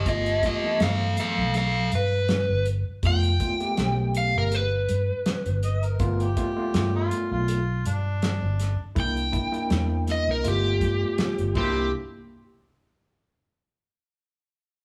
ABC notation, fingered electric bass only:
X:1
M:4/4
L:1/16
Q:"Swing 16ths" 1/4=81
K:Gdor
V:1 name="Fingered electric bass" clef=bass
G,,,2 z2 G,,2 z =B,,,3 G,,3 G,,,2 z | F,,,2 z2 =B,,,3 G,,,3 G,, z2 G,,,3 | G,,,2 z2 G,,2 z =B,,,3 G,,3 G,,,2 z | C,,2 z2 E,,3 C,, G,,,2 G,, z2 G,,, C,,2 |
z16 |]